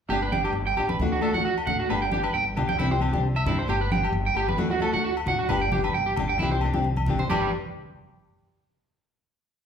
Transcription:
0.09 upright bass G1, nylon-string guitar B3 D4 G4, clean electric guitar G4, low agogo
0.22 clean electric guitar B4
0.32 nylon-string guitar B3 D4 G4, clean electric guitar G5, high conga
0.44 clean electric guitar G4, low agogo
0.53 upright bass G1
0.67 clean electric guitar G5
0.76 upright bass A1, nylon-string guitar B3 D4 G4, clean electric guitar G4, low agogo
0.89 clean electric guitar B4, high conga
0.99 upright bass D2, nylon-string guitar A3 D4 F#4, high conga
1.12 nylon-string guitar D4, clean electric guitar F#4
1.21 nylon-string guitar A3 D4 F#4, clean electric guitar A4, low agogo
1.33 upright bass D2, nylon-string guitar D4 F#4, clean electric guitar F#5, high conga
1.45 clean electric guitar F#4
1.58 low agogo
1.67 upright bass A1, nylon-string guitar A3 D4, clean electric guitar F#5, muted nylon-string guitar stroke, low conga
1.79 clean electric guitar F#4
1.89 upright bass G1, nylon-string guitar B3 D4 G4, clean electric guitar B4, low agogo
2.02 clean electric guitar G5
2.11 nylon-string guitar B3 D4 G4, clean electric guitar G4, high conga
2.23 clean electric guitar B4, low agogo
2.34 upright bass G1, clean electric guitar G5
2.56 upright bass B1, nylon-string guitar B3 D4 G4, low conga, low agogo
2.69 clean electric guitar G5, high conga
2.79 upright bass C2, nylon-string guitar E3 C4 D4 G4, clean electric guitar E4, high conga
2.91 nylon-string guitar C4 D4 G4, clean electric guitar C5
3.00 nylon-string guitar E3 C4 D4 G4, low agogo
3.13 upright bass C2, nylon-string guitar C4 D4 G4, high conga
3.36 clean electric guitar E5, low agogo
3.46 upright bass G2, nylon-string guitar E3 C4 D4 G4, clean electric guitar E4, low conga
3.59 clean electric guitar C5
3.67 upright bass G1, nylon-string guitar B3 D4 G4, clean electric guitar G4, low agogo
3.81 clean electric guitar B4
3.90 nylon-string guitar B3 D4 G4, clean electric guitar G5, high conga
4.03 clean electric guitar G4, low agogo
4.12 upright bass G1
4.26 clean electric guitar G5
4.34 upright bass G1, nylon-string guitar B3 D4 G4, clean electric guitar G4, low agogo
4.49 clean electric guitar B4, high conga
4.57 upright bass D2, nylon-string guitar F#3 A3 D4 F#4, high conga
4.70 nylon-string guitar A3 D4 F#4, clean electric guitar F#4
4.79 nylon-string guitar F#3 A3 F#4, clean electric guitar A4, muted nylon-string guitar stroke, low agogo
4.93 upright bass D2, nylon-string guitar A3 D4 F#4, clean electric guitar F#5
5.04 clean electric guitar F#4
5.17 low agogo
5.26 upright bass A1, nylon-string guitar F#3 D4 F#4, clean electric guitar F#5, low conga
5.39 clean electric guitar F#4
5.49 upright bass G1, nylon-string guitar B3 D4 G4, clean electric guitar B4, low conga, low agogo
5.62 clean electric guitar G5
5.72 nylon-string guitar B3 D4 G4, clean electric guitar G4, high conga, low conga
5.84 clean electric guitar B4, low agogo
5.94 upright bass G1, clean electric guitar G5
6.06 clean electric guitar G4
6.16 upright bass G1, nylon-string guitar B3 D4 G4, low conga, low agogo
6.29 clean electric guitar G5
6.39 upright bass C2, nylon-string guitar E3 C4 D4 G4, clean electric guitar E4, high conga
6.51 nylon-string guitar C4 D4 G4, clean electric guitar C5
6.61 nylon-string guitar E3 C4 D4 G4, low agogo
6.74 upright bass C2, nylon-string guitar C4 D4 G4, high conga
6.84 high conga
6.97 high conga, low agogo
7.06 upright bass G#1, nylon-string guitar E3 C4 D4 G4, low conga
7.19 clean electric guitar C5, low conga
7.29 upright bass G1, nylon-string guitar B3 D4 G4, clean electric guitar G4 B4 D5, high conga, low agogo

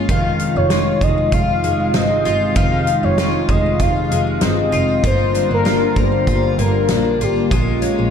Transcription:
Already playing: twelve-string acoustic guitar G#3 C#4, analog synth pad G#3 F4
0.07 double bass F1, analog synth pad C3 D#4, twelve-string acoustic guitar D#3 F4, kick, closed hi-hat
0.11 soft synth lead F5
0.39 closed hi-hat
0.56 double bass F1, soft synth lead C#5
0.70 twelve-string acoustic guitar F4, snare, closed hi-hat
1.01 double bass F1, twelve-string acoustic guitar G#3, soft synth lead D#5, kick, closed hi-hat
1.32 double bass F1, twelve-string acoustic guitar F4, soft synth lead F5, kick, closed hi-hat
1.64 double bass F1, twelve-string acoustic guitar G#3, closed hi-hat
1.94 double bass G1, twelve-string acoustic guitar C4, soft synth lead D#5, snare, closed hi-hat
2.25 double bass G1, twelve-string acoustic guitar F4, closed hi-hat
2.56 double bass F1, twelve-string acoustic guitar D#3 F4, soft synth lead F5, kick, closed hi-hat
2.87 closed hi-hat
3.03 double bass F1, soft synth lead C#5
3.18 twelve-string acoustic guitar F4, snare, closed hi-hat
3.49 double bass F1, twelve-string acoustic guitar G#3, soft synth lead D#5, kick, closed hi-hat
3.79 double bass F1, twelve-string acoustic guitar F4, soft synth lead F5, kick, closed hi-hat
4.11 double bass F1, twelve-string acoustic guitar G#3, closed hi-hat
4.41 double bass G1, twelve-string acoustic guitar C4, soft synth lead D#5, snare, closed hi-hat
4.72 double bass F1, twelve-string acoustic guitar F4, closed hi-hat
5.03 double bass G1, analog synth pad D3 G3 A#3, twelve-string acoustic guitar A#3 F4, soft synth lead C5, kick, closed hi-hat
5.35 twelve-string acoustic guitar D4, closed hi-hat
5.49 double bass G1
5.54 soft synth lead A#4
5.65 twelve-string acoustic guitar F4, snare, closed hi-hat
5.96 double bass G1, twelve-string acoustic guitar A#3, soft synth lead C5, kick, closed hi-hat
6.27 double bass G1, twelve-string acoustic guitar F4, kick, closed hi-hat
6.58 double bass G1, twelve-string acoustic guitar A#3, soft synth lead A#4, closed hi-hat
6.88 double bass A#1, twelve-string acoustic guitar D4, snare, closed hi-hat
7.20 double bass G#1, twelve-string acoustic guitar F4, soft synth lead G4, closed hi-hat
7.51 double bass A#1, twelve-string acoustic guitar G#3 F4, analog synth pad G#3 C#4, soft synth lead F4, kick, closed hi-hat
7.82 twelve-string acoustic guitar C#4, closed hi-hat
7.98 double bass A#1

